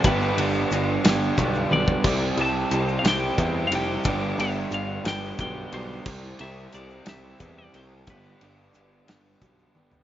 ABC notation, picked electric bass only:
X:1
M:6/8
L:1/8
Q:3/8=60
K:C
V:1 name="Picked electric bass" clef=bass
G,,, G,,, G,,, G,,, B,,, B,,, | C,, C,, C,, C,, E,, F,,, | G,,, G,,, G,,, G,,, B,,, B,,, | C,, C,, C,, C,, E,, C,, |
G,,, G,,, G,,, G,,, B,,, G,,, |]